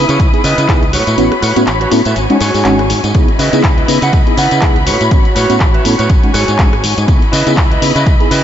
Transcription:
Already playing: E4 B5 D#6
0.08 C#3 E4 B4 C#5, closed hi-hat, tambourine
0.20 C#2, kick, closed hi-hat
0.33 B3 D#4 E4 G#4, closed hi-hat
0.44 C#3 E4 B4 D#5, open hi-hat, tambourine
0.58 C#3, closed hi-hat, tambourine
0.68 C#2 B3 D#4 E4 G#4, kick, clap, closed hi-hat
0.83 closed hi-hat
0.93 A2 F#4 B4 C#5 B5, open hi-hat, tambourine
1.07 A2, closed hi-hat, tambourine
1.18 A1 B3 C#4 E4 F#4, closed hi-hat, tambourine
1.32 cross-stick, closed hi-hat
1.42 A2 F#4 B4 C#5, open hi-hat, tambourine
1.56 A2 B3 C#4 E4 F#4, closed hi-hat, tambourine
1.67 A1, clap, closed hi-hat, tambourine
1.81 F#4 B4 C#5, closed hi-hat
1.91 A2 B3 C#4 E4 A4, clap, open hi-hat, tambourine
2.05 A2 F#4 B4 E5, closed hi-hat, tambourine
2.16 G#1 G#5, closed hi-hat, tambourine
2.30 G#3 C#4 D#4 F#4, muted fingered electric bass stroke, closed hi-hat
2.40 G#2 F#4 G#4 C#5, cross-stick, open hi-hat, tambourine
2.54 G#2, open hi-hat, tambourine
2.65 G#1 G#3 C#4 D#4 F#4, clap, closed hi-hat, tambourine
2.79 cross-stick, closed hi-hat
2.90 G#2, open hi-hat, tambourine
3.04 G#2, closed hi-hat, tambourine
3.14 C#2 B3 D#4 E4 G#4 D#5 B5, kick, closed hi-hat
3.28 closed hi-hat
3.39 C#3 E4 B4 D#5, open hi-hat, tambourine
3.53 C#3 B3 D#4 E4 G#4, closed hi-hat, tambourine
3.64 C#2, kick, clap, closed hi-hat
3.77 E4 B4 D#5, closed hi-hat
3.88 C#3 B3 D#4 E4 B4, open hi-hat, tambourine
4.02 C#3 E4 B4 F#5, closed hi-hat, tambourine
4.13 C#2, kick, closed hi-hat, tambourine
4.27 B3 D#4 E4 G#4, closed hi-hat
4.37 C#3 E4 B4 F#5, open hi-hat, tambourine
4.51 C#3, closed hi-hat, tambourine
4.62 C#2 B3 D#4 E4 G#4, kick, clap, closed hi-hat, tambourine
4.76 closed hi-hat
4.86 A2 F#4 B4 C#5, open hi-hat, tambourine
5.01 A2, closed hi-hat, tambourine
5.11 A1 B3 C#4 E4 F#4, kick, closed hi-hat, tambourine
5.25 muted fingered electric bass stroke, closed hi-hat
5.35 A2 F#4 B4 C#5, open hi-hat, tambourine
5.49 A2 B3 C#4 E4 F#4, closed hi-hat, tambourine
5.60 A1, kick, clap, closed hi-hat
5.74 F#4 B4 E5, closed hi-hat
5.84 A2 B3 C#4 E4 A4, open hi-hat, tambourine
5.98 A2 F#4 B4 C#5, closed hi-hat, tambourine
6.09 G#1 F#4 G#5, kick, closed hi-hat
6.23 G#3 C#4 D#4 F#4, muted fingered electric bass stroke, closed hi-hat
6.34 G#2 F#4 G#4 C#5, cross-stick, open hi-hat, tambourine
6.48 G#2, closed hi-hat, tambourine
6.58 G#1 G#3 C#4 D#4 F#4, kick, clap, closed hi-hat, tambourine
6.73 cross-stick, closed hi-hat
6.84 G#2, open hi-hat, tambourine
6.98 G#2, closed hi-hat, tambourine
7.07 C#2 B3 D#4 E4 G#4 D#5 B5, kick, closed hi-hat, tambourine
7.22 closed hi-hat
7.32 C#3 E4 B4 D#5, open hi-hat, tambourine
7.46 C#3 B3 D#4 E4 G#4, closed hi-hat, tambourine
7.57 C#2, kick, clap, closed hi-hat
7.71 E4 B4 D#5, closed hi-hat
7.82 C#3 B3 D#4 E4 B4, open hi-hat, tambourine
7.95 C#3 E4 B4 D#5, closed hi-hat, tambourine
8.06 C#2, kick, closed hi-hat
8.20 B3 D#4 E4 G#4, closed hi-hat
8.31 C#3 E4 B4 D#5, open hi-hat, tambourine

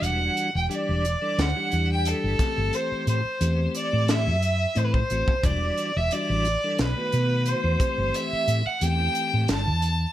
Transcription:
Already playing: E3 G3 D4 F#4
0.02 E1 F#5, closed hi-hat
0.37 closed hi-hat
0.55 E1 G5
0.69 E3 G3 D4 G4 D5, closed hi-hat
0.73 D5
0.89 E1
1.05 closed hi-hat
1.21 E3 G3 D4 A4
1.38 D2 F#5, snare, closed hi-hat
1.42 F#5
1.56 E3 G3 D4 G4
1.72 E2, closed hi-hat
1.92 G5
2.05 A4, closed hi-hat
2.24 G1
2.38 E3 A3 C4 G4, kick, snare, closed hi-hat
2.57 G1
2.73 C5, closed hi-hat
2.92 muted fretless electric bass stroke
3.07 A2 C5, closed hi-hat
3.25 muted fretless electric bass stroke
3.40 E2 E3 A3 C4 G4, closed hi-hat
3.75 D5, closed hi-hat
3.93 A2
4.08 E5, snare, closed hi-hat
4.27 F#2
4.42 closed hi-hat
4.75 A2 E3 A3 C4 E4 C5, closed hi-hat
4.84 B4
4.92 C5, kick
5.10 A1 E3 A3 C4 F#4, closed hi-hat
5.28 muted fretless electric bass stroke, kick
5.43 E1 E3 G3 D4 F#4 D5, kick, closed hi-hat
5.78 closed hi-hat
5.96 E1 E5
6.11 E3 G3 D4 F#4 D5, closed hi-hat
6.29 A1
6.45 closed hi-hat
6.64 E3 G3 D4 A4
6.79 B1 B4, snare, closed hi-hat
6.97 D#3 A3 B3 F#4
7.12 B2, closed hi-hat
7.46 C5, closed hi-hat
7.64 E2
7.80 E3 A3 C4 G4, kick, closed hi-hat
7.98 G1
8.14 E5, closed hi-hat
8.32 muted fretless electric bass stroke
8.47 A2, closed hi-hat
8.66 F#5, muted fretless electric bass stroke
8.81 E2 E3 A3 C4 G4 G5, closed hi-hat
9.15 closed hi-hat
9.33 A2
9.48 G1 A5, snare, closed hi-hat
9.66 E2
9.82 closed hi-hat

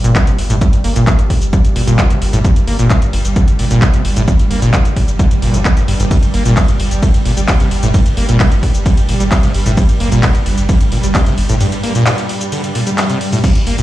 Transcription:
Already playing: G2 G3
0.04 G1 A#2, closed hi-hat, shaker
0.16 G3, kick, clap, closed hi-hat, shaker
0.27 G1 C3, closed hi-hat, shaker
0.38 G1, open hi-hat
0.50 G1 A2, closed hi-hat, shaker
0.61 G2, kick, closed hi-hat, shaker
0.73 G1, closed hi-hat, shaker
0.84 G1 A#3, open hi-hat
0.96 G1 A#2, closed hi-hat, shaker
1.07 A#2, kick, clap, closed hi-hat, shaker
1.19 G1, closed hi-hat, shaker
1.30 G1, kick, open hi-hat
1.42 G1, closed hi-hat, shaker
1.53 D3, kick, closed hi-hat, shaker
1.65 G1, closed hi-hat, shaker
1.76 G1 A#2, open hi-hat
1.87 G1 A#2, closed hi-hat, shaker
1.99 G3, kick, clap, closed hi-hat, shaker
2.10 G1 C3, closed hi-hat, shaker
2.22 G1, open hi-hat
2.33 G1 A2, closed hi-hat, shaker
2.45 G2, kick, closed hi-hat, shaker
2.56 G1, closed hi-hat, shaker
2.67 G1 A#3, open hi-hat
2.79 G1 A#2, closed hi-hat, shaker
2.90 kick, clap, closed hi-hat, shaker
3.02 G1, closed hi-hat, shaker
3.13 G1, open hi-hat
3.25 G1, closed hi-hat, shaker
3.36 D3, kick, closed hi-hat, shaker
3.48 G1, closed hi-hat, shaker
3.59 G1 A#2, open hi-hat
3.71 G1 A#2, closed hi-hat, shaker
3.82 G3, kick, clap, closed hi-hat, shaker
3.94 G1 C3, closed hi-hat, shaker
4.05 G1, open hi-hat
4.16 G1 A2, closed hi-hat, shaker
4.28 G2, kick, closed hi-hat, shaker
4.39 G1, closed hi-hat, shaker
4.51 G1 A#3, open hi-hat
4.62 G1 A#2, closed hi-hat, shaker
4.74 A#2, kick, clap, closed hi-hat, shaker
4.85 G1, closed hi-hat, shaker
4.96 G1, kick, open hi-hat
5.08 G1, closed hi-hat, shaker
5.19 D3, kick, closed hi-hat, shaker
5.31 G1, closed hi-hat, shaker
5.42 G1 A#2, open hi-hat
5.54 G1 G3, closed hi-hat, shaker
5.65 G2, kick, clap, closed hi-hat, shaker
5.77 G1 G2, closed hi-hat, shaker
5.88 G1 G2, open hi-hat
6.00 G1, closed hi-hat, shaker
6.11 G2, kick, closed hi-hat, ride, shaker
6.23 G1, closed hi-hat, shaker
6.34 G1 A#3, open hi-hat
6.45 G1 A#2, closed hi-hat, shaker
6.57 kick, clap, closed hi-hat, ride, shaker
6.68 G1, closed hi-hat, shaker
6.80 G1, open hi-hat
6.91 G1, closed hi-hat, shaker
7.03 D3, kick, closed hi-hat, ride, shaker
7.14 G1, closed hi-hat, shaker
7.25 G1 A#2, open hi-hat
7.37 G1 G3, closed hi-hat, shaker
7.48 G3, kick, clap, closed hi-hat, ride, shaker
7.60 G1 C3, closed hi-hat, shaker
7.71 G1, open hi-hat
7.83 G1 A2, closed hi-hat, shaker
7.94 G2, kick, closed hi-hat, ride, shaker
8.06 G1, closed hi-hat, shaker
8.17 G1 A#3, open hi-hat
8.29 G1 A#2, closed hi-hat, shaker
8.40 A#2, kick, clap, closed hi-hat, ride, shaker
8.52 G1, closed hi-hat, shaker
8.63 G1, kick, open hi-hat
8.74 G1, closed hi-hat, shaker
8.86 D3, kick, closed hi-hat, ride, shaker
8.97 G1, closed hi-hat, shaker
9.09 G1 A#2, open hi-hat
9.20 G1 G3, closed hi-hat, shaker
9.31 G3, kick, clap, closed hi-hat, ride, shaker
9.43 G1 C3, closed hi-hat, shaker
9.54 G1, open hi-hat
9.66 G1 A2, closed hi-hat, shaker
9.77 G2, kick, closed hi-hat, ride, shaker
9.89 G1, closed hi-hat, shaker
10.00 G1 A#3, open hi-hat
10.12 G1 A#2, closed hi-hat, shaker
10.23 kick, clap, closed hi-hat, ride, shaker
10.35 G1, closed hi-hat, shaker
10.46 G1, open hi-hat
10.58 G1, closed hi-hat, shaker
10.69 D3, kick, closed hi-hat, ride, shaker
10.81 G1, closed hi-hat, shaker
10.92 G1 A#2, open hi-hat
11.03 G1 G3, closed hi-hat, shaker
11.15 G3, kick, clap, closed hi-hat, ride, shaker
11.26 G1 C3, closed hi-hat, shaker
11.38 G1, open hi-hat
11.49 G1 A2, closed hi-hat, shaker
11.61 G2, closed hi-hat, ride, shaker
11.72 closed hi-hat, shaker
11.83 A#3, open hi-hat
11.95 A#2, closed hi-hat, shaker
12.06 A#2, clap, closed hi-hat, ride, shaker
12.18 closed hi-hat, shaker
12.29 open hi-hat
12.41 closed hi-hat, shaker
12.52 D3, closed hi-hat, ride, shaker
12.64 closed hi-hat, shaker
12.75 A#2, open hi-hat
12.87 G3, closed hi-hat, shaker
12.98 G3, clap, closed hi-hat, ride, shaker
13.10 C3, closed hi-hat, shaker
13.21 open hi-hat
13.32 A2, open hi-hat, shaker
13.44 G2 G3, kick, closed hi-hat, crash, ride, shaker
13.55 G1, closed hi-hat, shaker
13.67 G1 A#3, open hi-hat
13.78 G1 A#2, closed hi-hat, shaker

